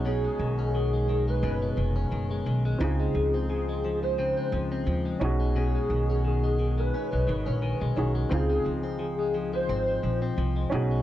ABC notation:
X:1
M:4/4
L:1/16
Q:"Swing 16ths" 1/4=87
K:Db
V:1 name="Soft synth lead"
A4 A3 _c4 z4 z | A4 A3 c4 z4 z | A4 A3 _c6- c z2 | A4 A3 c4 z4 z |]
V:2 name="Upright piano"
[DEGA]12- [DEGA]2 z2 | [CEFA]12- [CEFA]2 [DEGA]2- | [DEGA]12- [DEGA]2 [DEGA]2 | [CEFA]12- [CEFA]2 [DEGA]2 |]
V:3 name="Clean electric guitar" clef=bass
[_C,A,D] A, E, D E, A, E, A, [C,D] A, E, D E, A, E, A, | [D,C] A, F, C F, A, F, A, [D,C] A, F, C F, A, _C, A, | [_C,D] A, E, D E, A, E, A, D A, E, D E, A, E, A, | [D,C] A, F, C F, A, F, A, C A, F, C F, A, _C, A, |]
V:4 name="Upright bass" clef=bass
_C,,2 C,,6 G,,,2 F,,,2 G,,,2 C,,2 | D,,2 D,,6- D,, z D,,2 E,,2 _C,,2- | _C,,2 C,,6 z C,, A,,, B,,,2 C,, C,,2 | D,,2 D,,6 A,,,2 B,,,2 C,,2 _C,,2 |]